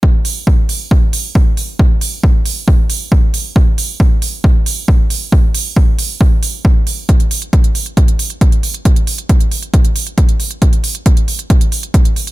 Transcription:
\new DrumStaff \with { instrumentName = "Drums" } \drummode { \time 4/4 \tempo 4 = 136 bd8 hho8 bd8 hho8 bd8 hho8 bd8 hho8 | bd8 hho8 bd8 hho8 bd8 hho8 bd8 hho8 | bd8 hho8 bd8 hho8 bd8 hho8 bd8 hho8 | bd8 hho8 bd8 hho8 bd8 hho8 bd8 hho8 |
<hh bd>16 hh16 hho16 hh16 <hh bd>16 hh16 hho16 hh16 <hh bd>16 hh16 hho16 hh16 <hh bd>16 hh16 hho16 hh16 | <hh bd>16 hh16 hho16 hh16 <hh bd>16 hh16 hho16 hh16 <hh bd>16 hh16 hho16 hh16 <hh bd>16 hh16 hho16 hh16 | <hh bd>16 hh16 hho16 hh16 <hh bd>16 hh16 hho16 hh16 <hh bd>16 hh16 hho16 hh16 <hh bd>16 hh16 hho16 hh16 | }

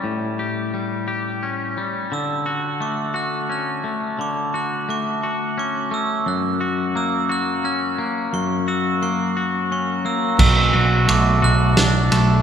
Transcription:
<<
  \new Staff \with { instrumentName = "Glockenspiel" } { \time 3/4 \key b \minor \tempo 4 = 87 r2. | e'''4 d'''8 fis'''8 fis'''4 | d'''8 fis'''8 d'''4 d'''8 e'''8 | fis'''4 e'''8 fis'''8 fis'''4 |
cis'''8 e'''8 cis'''4 cis'''8 e'''8 | e'''4 d'''8 fis'''8 fis'''4 | }
  \new Staff \with { instrumentName = "Clean electric guitar" } { \time 3/4 \key b \minor <a, g cis' g'>8 g'8 g8 g'8 cis'8 g8 | d8 fis'8 a8 fis'8 cis'8 a8 | d8 fis'8 a8 fis'8 cis'8 a8 | fis,8 fis'8 ais8 fis'8 cis'8 ais8 |
fis,8 fis'8 ais8 fis'8 cis'8 ais8 | b,8 fis'8 a8 fis'8 d'8 a8 | }
  \new Staff \with { instrumentName = "Picked electric bass" } { \clef bass \time 3/4 \key b \minor r2. | r2. | r2. | r2. |
r2. | b,,8 b,,8 b,,8 b,,8 b,,8 b,,8 | }
  \new DrumStaff \with { instrumentName = "Drums" } \drummode { \time 3/4 r4 r4 r4 | r4 r4 r4 | r4 r4 r4 | r4 r4 r4 |
r4 r4 r4 | <cymc bd>4 cymr4 <cymr sn>8 cymr8 | }
>>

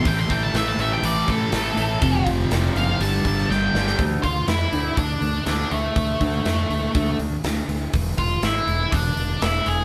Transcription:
<<
  \new Staff \with { instrumentName = "Lead electric guitar" } { \time 4/4 \key d \dorian \tempo 4 = 122 g''16 c'''16 g''16 a''16 e''16 a''16 e''16 g''16 d''8 a'4.~ | a'8 r4 f''8 a''4 g''4 | r8 <f' f''>8 <e' e''>4 <d' d''>4 <d' d''>8 <a a'>8~ | <a a'>2~ <a a'>8 r4. |
r8 <f' f''>8 <e' e''>4 <d' d''>4 <e' e''>8 <gis' gis''>8 | }
  \new Staff \with { instrumentName = "Clean electric guitar" } { \time 4/4 \key d \dorian r1 | r1 | <d a d'>8 <d a>8 <d a>8 <d a d'>8 <d a>8 <d a>8 <d a d'>8 <d a>8 | <d a>8 <d a d'>8 <d a>8 <d a>8 <d a d'>8 <d a>8 <d a>8 <d a>8 |
r1 | }
  \new Staff \with { instrumentName = "Distorted electric guitar" } { \clef bass \time 4/4 \key d \dorian <a, e a>8 <a, e a>8 <a, e a>8 <a, e a>8 <a, e a>8 <a, e a>8 <a, e a>8 <a, e a>8 | <f, c f>8 <f, c f>8 <f, c f>8 <f, c f>8 <g, d g>8 <g, d g>8 <g, d g>8 <g, d g>8 | r1 | r1 |
r1 | }
  \new Staff \with { instrumentName = "Fingered electric bass" } { \clef bass \time 4/4 \key d \dorian a,,8 a,,8 a,,8 a,,8 a,,8 a,8 a,,8 a,,8 | f,,8 f,,8 f,,8 fis,,8 g,,8 g,,8 g,,8 g,,8 | d,8 d,8 f,8 d,8 d,8 d,8 d,8 d,8 | d,8 d,8 f,8 d,8 d,8 d,8 d,8 d,8 |
e,,8 e,,8 gis,,8 e,,8 e,,8 e,,8 e,,8 e,,8 | }
  \new DrumStaff \with { instrumentName = "Drums" } \drummode { \time 4/4 <hho bd>8 <hho bd>8 <hho sn>8 <hho sn>8 hho8 <hho bd>8 <hho sn>8 hho8 | <hho bd>8 <hho bd>8 <hho sn>8 hho8 hho8 <hho bd>16 sn16 sn8 sn16 sn16 | <hho bd>8 <hho bd>8 <hho sn>8 hho8 <hho bd>8 hho8 <hho sn>8 hho8 | <hho bd>8 <hho bd>8 <hho sn>8 hho8 <hho bd>8 hho8 <hho sn>8 hho8 |
<hho bd>8 <hho bd>8 <hho sn>8 hho8 <hho bd>8 hho8 <hho sn>8 hho8 | }
>>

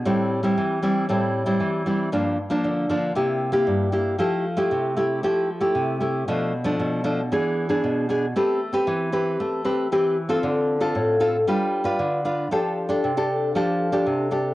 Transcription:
\new Staff \with { instrumentName = "Nylon-string guitar" } { \time 4/4 \key f \lydian \tempo 4 = 116 << { <g c' e'>8. <g c' e'>8. <g c' e'>8 <g c' e'>8. <g c' e'>8. <g c' e'>8 | <f bes d'>8 r16 <f bes d'>8. <f bes d'>8 <bes e' g'>8. <bes e' g'>8. <bes e' g'>8 | <a e' g'>8 r16 <a e' g'>8. <a e' g'>8 <a e' g'>8 r16 <a e' g'>8. <a e' g'>8 | <f a d'>8 r16 <f a d'>8. <f a d'>16 r16 <b d' gis'>8. <b d' gis'>8. <b d' gis'>16 r16 |
<c' g' b'>8 r16 <c' g' b'>8. <c' g' b'>4 <c' g' b'>8 <c' g' b'>8 r16 <c' f' a'>16~ | <c' f' a'>8. <c' f' a'>8. <c' f' a'>16 r16 <d' f' b'>8. <d' f' b'>8. <d' f' b'>8 | <d' g' a'>8. <d' g' a'>8 <d' g' a'>8. <d' g' a'>8. <d' g' a'>8. <d' g' a'>8 | } \\ { a,4 e4 a,4 e4 | g,4 d4 c4 g,4 | f4 c4 f4 c4 | b,4 b,4 e4 b,4 |
a4 e4 a4 e4 | d4 a,4 g4 d4 | f4 c4 f4 c4 | } >> }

